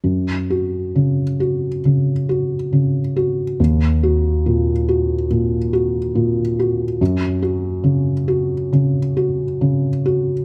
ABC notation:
X:1
M:4/4
L:1/8
Q:1/4=69
K:F#
V:1 name="Felt piano"
F,, F C, F C, F C, F | D,, F A,, F A,, F A,, F | F,, F C, F C, F C, F |]